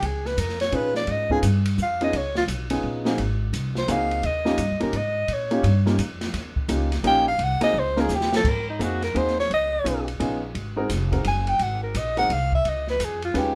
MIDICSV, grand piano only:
0, 0, Header, 1, 2, 480
1, 0, Start_track
1, 0, Tempo, 350672
1, 41, Time_signature, 3, 2, 24, 8
1, 18547, End_track
2, 0, Start_track
2, 0, Title_t, "Grand piano"
2, 0, Program_c, 0, 0
2, 984, Note_on_c, 0, 71, 59
2, 989, Note_on_c, 0, 68, 66
2, 992, Note_on_c, 0, 61, 54
2, 993, Note_on_c, 0, 63, 51
2, 993, Note_on_c, 0, 65, 56
2, 1718, Note_off_c, 0, 71, 0
2, 1721, Note_off_c, 0, 68, 0
2, 1722, Note_off_c, 0, 61, 0
2, 1723, Note_off_c, 0, 63, 0
2, 1723, Note_off_c, 0, 65, 0
2, 1787, Note_on_c, 0, 59, 71
2, 1787, Note_on_c, 0, 65, 69
2, 1788, Note_on_c, 0, 61, 69
2, 1790, Note_on_c, 0, 63, 68
2, 1793, Note_on_c, 0, 68, 85
2, 1942, Note_off_c, 0, 59, 0
2, 1943, Note_off_c, 0, 61, 0
2, 1943, Note_off_c, 0, 65, 0
2, 1944, Note_off_c, 0, 63, 0
2, 1946, Note_off_c, 0, 68, 0
2, 2750, Note_on_c, 0, 61, 68
2, 2751, Note_on_c, 0, 68, 82
2, 2752, Note_on_c, 0, 59, 67
2, 2754, Note_on_c, 0, 65, 66
2, 2756, Note_on_c, 0, 63, 63
2, 2904, Note_off_c, 0, 61, 0
2, 2905, Note_off_c, 0, 59, 0
2, 2905, Note_off_c, 0, 68, 0
2, 2906, Note_off_c, 0, 65, 0
2, 2907, Note_off_c, 0, 63, 0
2, 3701, Note_on_c, 0, 59, 65
2, 3702, Note_on_c, 0, 61, 61
2, 3703, Note_on_c, 0, 63, 61
2, 3703, Note_on_c, 0, 65, 60
2, 3703, Note_on_c, 0, 68, 75
2, 4154, Note_off_c, 0, 59, 0
2, 4154, Note_off_c, 0, 61, 0
2, 4154, Note_off_c, 0, 63, 0
2, 4154, Note_off_c, 0, 65, 0
2, 4154, Note_off_c, 0, 68, 0
2, 4184, Note_on_c, 0, 58, 74
2, 4187, Note_on_c, 0, 63, 66
2, 4189, Note_on_c, 0, 60, 66
2, 4192, Note_on_c, 0, 66, 64
2, 4192, Note_on_c, 0, 68, 77
2, 4341, Note_off_c, 0, 58, 0
2, 4342, Note_off_c, 0, 63, 0
2, 4343, Note_off_c, 0, 60, 0
2, 4345, Note_off_c, 0, 66, 0
2, 4345, Note_off_c, 0, 68, 0
2, 5313, Note_on_c, 0, 58, 71
2, 5315, Note_on_c, 0, 63, 65
2, 5316, Note_on_c, 0, 60, 61
2, 5317, Note_on_c, 0, 66, 64
2, 5321, Note_on_c, 0, 68, 77
2, 5796, Note_off_c, 0, 58, 0
2, 5797, Note_off_c, 0, 60, 0
2, 5797, Note_off_c, 0, 63, 0
2, 5798, Note_off_c, 0, 66, 0
2, 5800, Note_off_c, 0, 68, 0
2, 6095, Note_on_c, 0, 58, 71
2, 6102, Note_on_c, 0, 63, 66
2, 6106, Note_on_c, 0, 61, 62
2, 6106, Note_on_c, 0, 65, 62
2, 6111, Note_on_c, 0, 67, 73
2, 6256, Note_off_c, 0, 58, 0
2, 6259, Note_off_c, 0, 63, 0
2, 6261, Note_off_c, 0, 61, 0
2, 6261, Note_off_c, 0, 65, 0
2, 6264, Note_off_c, 0, 67, 0
2, 6574, Note_on_c, 0, 58, 64
2, 6575, Note_on_c, 0, 61, 55
2, 6575, Note_on_c, 0, 65, 57
2, 6577, Note_on_c, 0, 67, 65
2, 6579, Note_on_c, 0, 63, 55
2, 6735, Note_off_c, 0, 58, 0
2, 6736, Note_off_c, 0, 61, 0
2, 6736, Note_off_c, 0, 65, 0
2, 6736, Note_off_c, 0, 67, 0
2, 6737, Note_off_c, 0, 63, 0
2, 7540, Note_on_c, 0, 58, 74
2, 7543, Note_on_c, 0, 61, 68
2, 7547, Note_on_c, 0, 65, 68
2, 7547, Note_on_c, 0, 67, 79
2, 7548, Note_on_c, 0, 63, 61
2, 7698, Note_off_c, 0, 58, 0
2, 7699, Note_off_c, 0, 61, 0
2, 7701, Note_off_c, 0, 65, 0
2, 7701, Note_off_c, 0, 67, 0
2, 7702, Note_off_c, 0, 63, 0
2, 8025, Note_on_c, 0, 58, 66
2, 8025, Note_on_c, 0, 61, 56
2, 8025, Note_on_c, 0, 65, 58
2, 8033, Note_on_c, 0, 63, 59
2, 8033, Note_on_c, 0, 67, 68
2, 8180, Note_off_c, 0, 58, 0
2, 8180, Note_off_c, 0, 61, 0
2, 8180, Note_off_c, 0, 65, 0
2, 8184, Note_off_c, 0, 63, 0
2, 8184, Note_off_c, 0, 67, 0
2, 9152, Note_on_c, 0, 58, 66
2, 9156, Note_on_c, 0, 63, 58
2, 9158, Note_on_c, 0, 61, 58
2, 9158, Note_on_c, 0, 67, 73
2, 9161, Note_on_c, 0, 65, 58
2, 9431, Note_off_c, 0, 58, 0
2, 9434, Note_off_c, 0, 63, 0
2, 9435, Note_off_c, 0, 61, 0
2, 9435, Note_off_c, 0, 67, 0
2, 9436, Note_off_c, 0, 65, 0
2, 9636, Note_on_c, 0, 58, 81
2, 9636, Note_on_c, 0, 61, 75
2, 9644, Note_on_c, 0, 65, 72
2, 9645, Note_on_c, 0, 63, 75
2, 9645, Note_on_c, 0, 67, 85
2, 9913, Note_off_c, 0, 58, 0
2, 9914, Note_off_c, 0, 61, 0
2, 9918, Note_off_c, 0, 63, 0
2, 9918, Note_off_c, 0, 65, 0
2, 9918, Note_off_c, 0, 67, 0
2, 10414, Note_on_c, 0, 58, 78
2, 10421, Note_on_c, 0, 60, 70
2, 10422, Note_on_c, 0, 66, 75
2, 10424, Note_on_c, 0, 63, 71
2, 10429, Note_on_c, 0, 68, 84
2, 10574, Note_off_c, 0, 58, 0
2, 10578, Note_off_c, 0, 60, 0
2, 10578, Note_off_c, 0, 66, 0
2, 10579, Note_off_c, 0, 63, 0
2, 10582, Note_off_c, 0, 68, 0
2, 10906, Note_on_c, 0, 58, 68
2, 10912, Note_on_c, 0, 61, 63
2, 10912, Note_on_c, 0, 63, 65
2, 10918, Note_on_c, 0, 65, 64
2, 10920, Note_on_c, 0, 70, 79
2, 11060, Note_off_c, 0, 58, 0
2, 11063, Note_off_c, 0, 61, 0
2, 11063, Note_off_c, 0, 63, 0
2, 11066, Note_off_c, 0, 65, 0
2, 11067, Note_off_c, 0, 70, 0
2, 12036, Note_on_c, 0, 58, 63
2, 12038, Note_on_c, 0, 60, 54
2, 12040, Note_on_c, 0, 63, 53
2, 12044, Note_on_c, 0, 66, 55
2, 12046, Note_on_c, 0, 68, 68
2, 12314, Note_off_c, 0, 58, 0
2, 12315, Note_off_c, 0, 60, 0
2, 12316, Note_off_c, 0, 63, 0
2, 12318, Note_off_c, 0, 66, 0
2, 12319, Note_off_c, 0, 68, 0
2, 12517, Note_on_c, 0, 58, 61
2, 12521, Note_on_c, 0, 60, 59
2, 12523, Note_on_c, 0, 63, 58
2, 12524, Note_on_c, 0, 68, 65
2, 12527, Note_on_c, 0, 66, 56
2, 12795, Note_off_c, 0, 58, 0
2, 12797, Note_off_c, 0, 60, 0
2, 12798, Note_off_c, 0, 63, 0
2, 12798, Note_off_c, 0, 68, 0
2, 12800, Note_off_c, 0, 66, 0
2, 13469, Note_on_c, 0, 59, 62
2, 13473, Note_on_c, 0, 63, 57
2, 13474, Note_on_c, 0, 61, 54
2, 13477, Note_on_c, 0, 65, 59
2, 13481, Note_on_c, 0, 68, 65
2, 13751, Note_off_c, 0, 59, 0
2, 13753, Note_off_c, 0, 63, 0
2, 13754, Note_off_c, 0, 61, 0
2, 13755, Note_off_c, 0, 65, 0
2, 13757, Note_off_c, 0, 68, 0
2, 13960, Note_on_c, 0, 59, 69
2, 13960, Note_on_c, 0, 61, 63
2, 13961, Note_on_c, 0, 63, 68
2, 13961, Note_on_c, 0, 68, 76
2, 13964, Note_on_c, 0, 65, 64
2, 14237, Note_off_c, 0, 59, 0
2, 14237, Note_off_c, 0, 61, 0
2, 14237, Note_off_c, 0, 63, 0
2, 14237, Note_off_c, 0, 68, 0
2, 14239, Note_off_c, 0, 65, 0
2, 14735, Note_on_c, 0, 63, 73
2, 14740, Note_on_c, 0, 56, 78
2, 14740, Note_on_c, 0, 60, 71
2, 14743, Note_on_c, 0, 66, 68
2, 14744, Note_on_c, 0, 70, 86
2, 14896, Note_off_c, 0, 63, 0
2, 14898, Note_off_c, 0, 60, 0
2, 14899, Note_off_c, 0, 56, 0
2, 14900, Note_off_c, 0, 66, 0
2, 14901, Note_off_c, 0, 70, 0
2, 15214, Note_on_c, 0, 56, 61
2, 15216, Note_on_c, 0, 60, 58
2, 15219, Note_on_c, 0, 63, 55
2, 15222, Note_on_c, 0, 66, 58
2, 15223, Note_on_c, 0, 70, 67
2, 15375, Note_off_c, 0, 56, 0
2, 15377, Note_off_c, 0, 60, 0
2, 15378, Note_off_c, 0, 63, 0
2, 15380, Note_off_c, 0, 66, 0
2, 15380, Note_off_c, 0, 70, 0
2, 16656, Note_on_c, 0, 56, 66
2, 16656, Note_on_c, 0, 60, 55
2, 16656, Note_on_c, 0, 63, 57
2, 16662, Note_on_c, 0, 70, 72
2, 16664, Note_on_c, 0, 66, 55
2, 16817, Note_off_c, 0, 56, 0
2, 16817, Note_off_c, 0, 60, 0
2, 16817, Note_off_c, 0, 63, 0
2, 16820, Note_off_c, 0, 70, 0
2, 16821, Note_off_c, 0, 66, 0
2, 18255, Note_on_c, 0, 61, 65
2, 18259, Note_on_c, 0, 56, 69
2, 18261, Note_on_c, 0, 63, 64
2, 18262, Note_on_c, 0, 65, 61
2, 18267, Note_on_c, 0, 71, 75
2, 18547, Note_off_c, 0, 56, 0
2, 18547, Note_off_c, 0, 61, 0
2, 18547, Note_off_c, 0, 63, 0
2, 18547, Note_off_c, 0, 65, 0
2, 18547, Note_off_c, 0, 71, 0
2, 18547, End_track
0, 0, End_of_file